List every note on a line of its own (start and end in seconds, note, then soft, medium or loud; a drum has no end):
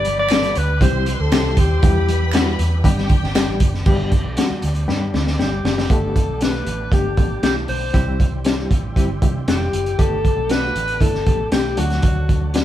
0.00 0.52 G1 loud
0.00 3.82 G3 medium
0.00 0.80 B3 medium
0.00 0.80 D4 medium
0.00 3.82 G4 medium
0.00 0.79 B4 medium
0.00 0.18 D5 loud
0.00 0.79 B5 medium
0.05 closed hi-hat medium
0.05 muted conga soft
0.05 high conga medium
0.18 0.59 D5 loud
0.18 high conga medium
0.29 0.56 G3 medium
0.29 0.56 B3 medium
0.29 0.56 D4 medium
0.29 0.56 A4 medium
0.29 finger snap medium
0.29 snare loud
0.29 closed hi-hat loud
0.43 closed hi-hat medium
0.43 high conga soft
0.55 0.77 D2 medium
0.55 0.82 B4 loud
0.55 closed hi-hat medium
0.55 low conga medium
0.81 1.13 C2 loud
0.81 1.07 G3 medium
0.81 1.82 C4 medium
0.81 1.07 C4 medium
0.81 2.83 E4 medium
0.81 1.07 E4 medium
0.81 1.07 G4 medium
0.81 1.81 C5 medium
0.81 1.16 C5 medium
0.81 1.81 C6 medium
0.81 kick medium
0.81 closed hi-hat medium
0.81 muted conga soft
0.81 high conga medium
0.81 low conga medium
1.06 closed hi-hat medium
1.06 muted conga soft
1.06 high conga medium
1.14 1.23 B4 medium
1.20 1.30 D2 medium
1.20 1.60 A4 medium
1.32 1.53 C2 loud
1.32 1.58 G3 medium
1.32 1.58 C4 medium
1.32 1.58 E4 medium
1.32 1.58 G4 medium
1.32 finger snap medium
1.32 snare loud
1.32 closed hi-hat medium
1.57 1.79 D#2 medium
1.57 2.60 G4 medium
1.57 kick medium
1.57 closed hi-hat medium
1.57 high conga medium
1.57 low conga medium
1.83 2.55 E2 loud
1.83 2.08 G3 medium
1.83 3.84 B3 medium
1.83 2.09 B3 medium
1.83 2.09 E4 medium
1.83 2.09 G4 medium
1.83 2.82 B4 medium
1.83 2.82 B5 medium
1.83 kick loud
1.83 closed hi-hat loud
2.09 closed hi-hat medium
2.09 muted conga soft
2.09 high conga medium
2.21 high conga medium
2.32 2.59 G3 medium
2.32 2.59 B3 medium
2.32 2.59 E4 medium
2.32 2.59 F#4 medium
2.32 finger snap medium
2.32 snare loud
2.32 closed hi-hat loud
2.46 high conga medium
2.59 2.81 E2 loud
2.59 closed hi-hat medium
2.59 muted conga soft
2.59 low conga medium
2.84 3.17 G1 loud
2.84 3.10 G3 loud
2.84 3.10 B3 medium
2.84 3.10 D4 medium
2.84 3.86 D4 medium
2.84 3.84 G4 medium
2.84 3.10 G4 loud
2.84 3.84 G5 medium
2.84 kick loud
2.84 closed hi-hat medium
2.84 muted conga soft
2.84 high conga medium
2.84 low conga medium
2.98 snare soft
3.09 kick medium
3.09 closed hi-hat medium
3.09 high conga medium
3.23 3.44 G1 medium
3.23 snare soft
3.35 3.61 G3 medium
3.35 3.61 B3 medium
3.35 3.61 D4 medium
3.35 3.61 G4 medium
3.35 finger snap loud
3.35 snare loud
3.35 closed hi-hat loud
3.48 3.59 A1 medium
3.60 3.82 F#1 loud
3.60 kick medium
3.60 closed hi-hat loud
3.60 muted conga soft
3.60 high conga medium
3.60 low conga medium
3.74 snare soft
3.86 4.19 G1 loud
3.86 4.12 G3 loud
3.86 5.89 G3 medium
3.86 4.12 B3 medium
3.86 5.88 B3 medium
3.86 4.12 D4 medium
3.86 5.88 D4 medium
3.86 4.12 G4 loud
3.86 5.88 G4 medium
3.86 kick loud
3.86 crash medium
4.12 kick medium
4.12 closed hi-hat medium
4.12 muted conga soft
4.12 high conga medium
4.25 4.35 B1 medium
4.25 high conga medium
4.37 4.63 G3 medium
4.37 4.63 B3 medium
4.37 4.63 D4 medium
4.37 4.63 F#4 medium
4.37 snare loud
4.37 closed hi-hat medium
4.37 muted conga soft
4.49 muted fingered electric bass stroke soft
4.49 high conga soft
4.62 4.85 D2 medium
4.62 closed hi-hat medium
4.62 muted conga soft
4.62 low conga medium
4.75 closed hi-hat soft
4.88 5.10 G2 loud
4.88 5.14 G3 loud
4.88 5.14 B3 medium
4.88 5.14 D4 medium
4.88 5.14 G4 loud
4.88 snare medium
4.88 high conga medium
4.88 low conga medium
5.14 5.35 D2 medium
5.14 snare medium
5.14 muted conga soft
5.14 high conga medium
5.27 snare medium
5.39 5.61 G1 medium
5.39 5.65 G3 medium
5.39 5.65 B3 medium
5.39 5.65 D4 medium
5.39 5.65 G4 medium
5.39 5.93 G4 medium
5.39 snare medium
5.64 5.86 F#1 medium
5.64 snare loud
5.64 muted conga soft
5.64 high conga medium
5.64 low conga medium
5.78 snare medium
5.89 6.23 G1 loud
5.89 7.92 A3 medium
5.89 6.16 A3 loud
5.89 7.92 B3 medium
5.89 6.16 B3 medium
5.89 7.92 D4 medium
5.89 6.16 D4 medium
5.89 7.92 G4 medium
5.89 6.16 G4 loud
5.89 6.44 A4 medium
5.89 kick loud
5.89 closed hi-hat medium
6.16 kick medium
6.16 closed hi-hat medium
6.16 muted conga soft
6.16 high conga medium
6.28 6.61 B1 medium
6.28 high conga medium
6.41 6.67 A3 medium
6.41 6.67 B3 medium
6.41 6.67 D4 medium
6.41 6.67 G4 medium
6.41 6.95 B4 medium
6.41 snare loud
6.41 closed hi-hat medium
6.67 6.88 A1 medium
6.67 closed hi-hat medium
6.67 muted conga soft
6.67 low conga medium
6.92 7.14 G1 medium
6.92 7.05 A3 medium
6.92 7.05 B3 medium
6.92 7.05 D4 medium
6.92 7.05 G4 medium
6.92 7.43 G4 medium
6.92 kick medium
6.92 closed hi-hat medium
6.92 muted conga soft
6.92 high conga medium
7.17 7.39 A1 medium
7.17 7.30 A3 medium
7.17 7.30 B3 medium
7.17 7.31 D4 medium
7.17 7.30 A4 medium
7.17 kick medium
7.17 closed hi-hat medium
7.17 muted conga soft
7.17 high conga medium
7.43 7.65 B1 medium
7.43 7.69 A3 medium
7.43 7.69 B3 medium
7.43 7.69 D4 medium
7.43 7.69 E4 medium
7.43 7.55 G4 medium
7.43 snare loud
7.43 closed hi-hat medium
7.43 muted conga soft
7.68 7.90 B1 medium
7.68 8.42 C5 loud
7.68 open hi-hat medium
7.68 muted conga soft
7.68 high conga medium
7.68 low conga medium
7.94 8.67 C2 medium
7.94 8.20 G3 medium
7.94 9.97 G3 medium
7.94 8.20 C4 medium
7.94 9.97 C4 medium
7.94 8.20 E4 medium
7.94 9.97 E4 medium
7.94 11.74 G4 medium
7.94 8.20 G4 loud
7.94 kick loud
7.94 closed hi-hat medium
8.20 kick medium
8.20 closed hi-hat medium
8.20 muted conga soft
8.20 high conga medium
8.33 high conga medium
8.44 8.71 G3 medium
8.44 8.71 C4 medium
8.44 8.71 E4 medium
8.44 8.71 G4 medium
8.44 snare loud
8.44 closed hi-hat medium
8.71 8.93 A1 medium
8.71 kick medium
8.71 closed hi-hat medium
8.71 low conga medium
8.96 9.18 G1 medium
8.96 9.09 G3 medium
8.96 9.09 C4 medium
8.96 9.09 E4 medium
8.96 9.09 G4 loud
8.96 kick medium
8.96 closed hi-hat medium
8.96 muted conga soft
8.96 high conga medium
9.22 9.44 C3 loud
9.22 9.35 G3 medium
9.22 9.35 C4 medium
9.22 9.35 E4 medium
9.22 9.35 G4 medium
9.22 kick medium
9.22 closed hi-hat medium
9.22 muted conga soft
9.22 high conga medium
9.47 9.69 F1 medium
9.47 9.73 G3 medium
9.47 9.74 C4 medium
9.47 9.74 E4 medium
9.47 9.74 G4 medium
9.47 10.01 G4 medium
9.47 snare loud
9.47 closed hi-hat medium
9.73 9.95 F#1 medium
9.73 closed hi-hat medium
9.73 high conga medium
9.73 low conga medium
9.86 closed hi-hat soft
9.98 10.32 G1 loud
9.98 12.65 A3 medium
9.98 10.24 A3 loud
9.98 11.76 B3 medium
9.98 10.25 B3 medium
9.98 11.76 D4 medium
9.98 10.25 D4 medium
9.98 10.25 G4 loud
9.98 10.52 A4 loud
9.98 kick loud
9.98 closed hi-hat medium
10.25 kick medium
10.25 closed hi-hat medium
10.25 high conga medium
10.37 10.70 B1 medium
10.37 high conga medium
10.49 10.76 A3 medium
10.49 10.76 B3 medium
10.49 10.76 D4 medium
10.49 10.76 F#4 medium
10.49 11.03 B4 loud
10.49 snare loud
10.49 closed hi-hat medium
10.49 muted conga soft
10.75 10.97 A1 medium
10.75 closed hi-hat medium
10.75 muted conga soft
10.75 low conga medium
10.88 closed hi-hat soft
11.01 11.23 G1 loud
11.01 11.14 A3 medium
11.01 11.14 B3 medium
11.01 11.14 D4 medium
11.01 11.14 E4 medium
11.01 11.52 A4 loud
11.01 kick medium
11.01 closed hi-hat medium
11.01 high conga medium
11.14 snare soft
11.26 11.49 A1 medium
11.26 11.39 A3 medium
11.26 11.39 B3 medium
11.26 11.40 D4 medium
11.26 11.40 G4 medium
11.26 kick medium
11.26 closed hi-hat medium
11.26 high conga medium
11.52 11.74 B1 medium
11.52 11.76 A3 medium
11.52 11.78 B3 medium
11.52 11.76 D4 medium
11.52 11.78 G4 medium
11.52 11.80 G4 medium
11.52 snare loud
11.52 closed hi-hat medium
11.52 muted conga soft
11.77 12.00 D2 medium
11.77 12.39 F#3 medium
11.77 12.65 F#3 medium
11.77 12.39 A3 medium
11.77 12.39 D4 medium
11.77 12.65 D4 medium
11.77 11.84 F4 medium
11.77 12.65 F#4 medium
11.77 12.55 F#4 medium
11.77 closed hi-hat medium
11.77 high conga medium
11.77 low conga medium
11.84 12.42 F#4 medium
11.90 snare soft
11.90 closed hi-hat soft
12.02 12.65 D2 loud
12.02 kick loud
12.02 closed hi-hat medium
12.29 kick medium
12.29 closed hi-hat medium
12.29 muted conga soft
12.29 high conga medium
12.42 high conga medium
12.54 12.65 F#3 medium
12.54 12.65 A3 medium
12.54 12.65 D4 medium
12.54 12.65 F#4 medium
12.54 snare loud
12.54 closed hi-hat medium